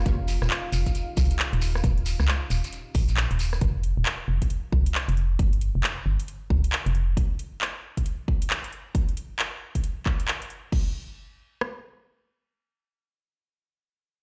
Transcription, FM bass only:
X:1
M:4/4
L:1/16
Q:"Swing 16ths" 1/4=135
K:Fm
V:1 name="FM bass" clef=bass
F,,,3 E,,, z2 F,,, z3 C,, z2 E,,,3 | E,,,3 D,, z2 E,,, z3 B,,,3 E,,,3 | F,,,3 E,,, z2 F,,, z3 C,, z2 F,,,3 | G,,,3 F,,, z2 G,,, z3 D,, z2 F,,,3 |
z16 | z16 | z16 | z16 |]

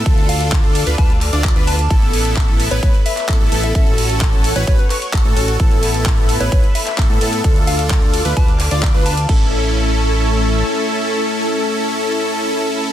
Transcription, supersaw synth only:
X:1
M:4/4
L:1/16
Q:1/4=130
K:A
V:1 name="Supersaw synth"
[D=FA]6- [DFA] [DFB] [DFB] z2 [DFd]2 [DFB]2 z | [B,EA]6- [B,EA] [B,EB] [B,EB] z3 [B,EA] [B,EA] [B,EA]2 | [CFA]6- [CFA] [CFB] [CFB] z3 [CFA] [CFA] [CFA]2 | [B,EA]6- [B,EA] [B,EB] [B,EB] z3 [B,EA] [B,EA] [B,EA]2 |
[D=FA]6- [DFA] [DFB] [DFB] z2 [DFd]2 [DFB]2 z | [CEA]16- | [CEA]16 |]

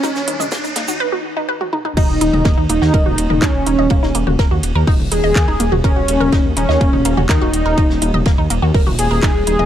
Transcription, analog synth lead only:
X:1
M:4/4
L:1/8
Q:1/4=124
K:Ebm
V:1 name="Analog synth lead"
D2 z6 | E3 E3 D2- | D2 z3 A3 | D3 D3 E2- |
E2 z3 A3 |]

